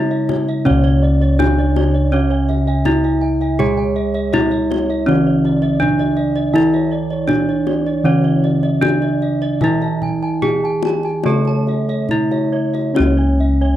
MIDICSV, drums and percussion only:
0, 0, Header, 1, 2, 480
1, 0, Start_track
1, 0, Tempo, 739827
1, 423, Time_signature, 4, 2, 24, 8
1, 5221, Tempo, 781250
1, 6181, Tempo, 815217
1, 7141, Tempo, 857143
1, 8556, End_track
2, 0, Start_track
2, 0, Title_t, "Kendang"
2, 189, Note_on_c, 9, 63, 53
2, 189, Note_on_c, 9, 64, 67
2, 254, Note_off_c, 9, 63, 0
2, 254, Note_off_c, 9, 64, 0
2, 430, Note_on_c, 9, 64, 78
2, 495, Note_off_c, 9, 64, 0
2, 549, Note_on_c, 9, 62, 22
2, 614, Note_off_c, 9, 62, 0
2, 907, Note_on_c, 9, 63, 64
2, 907, Note_on_c, 9, 64, 70
2, 972, Note_off_c, 9, 63, 0
2, 972, Note_off_c, 9, 64, 0
2, 1144, Note_on_c, 9, 63, 65
2, 1209, Note_off_c, 9, 63, 0
2, 1386, Note_on_c, 9, 62, 26
2, 1451, Note_off_c, 9, 62, 0
2, 1624, Note_on_c, 9, 62, 23
2, 1689, Note_off_c, 9, 62, 0
2, 1851, Note_on_c, 9, 63, 66
2, 1851, Note_on_c, 9, 64, 68
2, 1916, Note_off_c, 9, 63, 0
2, 1916, Note_off_c, 9, 64, 0
2, 1976, Note_on_c, 9, 62, 21
2, 2040, Note_off_c, 9, 62, 0
2, 2332, Note_on_c, 9, 64, 87
2, 2397, Note_off_c, 9, 64, 0
2, 2459, Note_on_c, 9, 62, 22
2, 2524, Note_off_c, 9, 62, 0
2, 2812, Note_on_c, 9, 63, 71
2, 2812, Note_on_c, 9, 64, 73
2, 2877, Note_off_c, 9, 63, 0
2, 2877, Note_off_c, 9, 64, 0
2, 3059, Note_on_c, 9, 63, 63
2, 3124, Note_off_c, 9, 63, 0
2, 3299, Note_on_c, 9, 62, 25
2, 3299, Note_on_c, 9, 63, 63
2, 3364, Note_off_c, 9, 62, 0
2, 3364, Note_off_c, 9, 63, 0
2, 3534, Note_on_c, 9, 62, 23
2, 3599, Note_off_c, 9, 62, 0
2, 3778, Note_on_c, 9, 64, 64
2, 3843, Note_off_c, 9, 64, 0
2, 3903, Note_on_c, 9, 62, 23
2, 3968, Note_off_c, 9, 62, 0
2, 4254, Note_on_c, 9, 64, 76
2, 4319, Note_off_c, 9, 64, 0
2, 4367, Note_on_c, 9, 62, 20
2, 4432, Note_off_c, 9, 62, 0
2, 4728, Note_on_c, 9, 63, 62
2, 4728, Note_on_c, 9, 64, 69
2, 4793, Note_off_c, 9, 63, 0
2, 4793, Note_off_c, 9, 64, 0
2, 4974, Note_on_c, 9, 63, 56
2, 5039, Note_off_c, 9, 63, 0
2, 5226, Note_on_c, 9, 62, 23
2, 5288, Note_off_c, 9, 62, 0
2, 5462, Note_on_c, 9, 62, 23
2, 5524, Note_off_c, 9, 62, 0
2, 5699, Note_on_c, 9, 63, 58
2, 5699, Note_on_c, 9, 64, 64
2, 5760, Note_off_c, 9, 63, 0
2, 5760, Note_off_c, 9, 64, 0
2, 5820, Note_on_c, 9, 62, 21
2, 5882, Note_off_c, 9, 62, 0
2, 6180, Note_on_c, 9, 64, 88
2, 6239, Note_off_c, 9, 64, 0
2, 6301, Note_on_c, 9, 62, 21
2, 6360, Note_off_c, 9, 62, 0
2, 6421, Note_on_c, 9, 64, 55
2, 6480, Note_off_c, 9, 64, 0
2, 6660, Note_on_c, 9, 63, 52
2, 6660, Note_on_c, 9, 64, 69
2, 6718, Note_off_c, 9, 63, 0
2, 6718, Note_off_c, 9, 64, 0
2, 6897, Note_on_c, 9, 62, 23
2, 6897, Note_on_c, 9, 63, 53
2, 6956, Note_off_c, 9, 62, 0
2, 6956, Note_off_c, 9, 63, 0
2, 7019, Note_on_c, 9, 62, 26
2, 7078, Note_off_c, 9, 62, 0
2, 7138, Note_on_c, 9, 62, 22
2, 7138, Note_on_c, 9, 63, 67
2, 7194, Note_off_c, 9, 62, 0
2, 7194, Note_off_c, 9, 63, 0
2, 7258, Note_on_c, 9, 62, 26
2, 7314, Note_off_c, 9, 62, 0
2, 7382, Note_on_c, 9, 62, 20
2, 7438, Note_off_c, 9, 62, 0
2, 7615, Note_on_c, 9, 64, 55
2, 7671, Note_off_c, 9, 64, 0
2, 7742, Note_on_c, 9, 62, 24
2, 7798, Note_off_c, 9, 62, 0
2, 7985, Note_on_c, 9, 62, 23
2, 8041, Note_off_c, 9, 62, 0
2, 8105, Note_on_c, 9, 63, 57
2, 8161, Note_off_c, 9, 63, 0
2, 8556, End_track
0, 0, End_of_file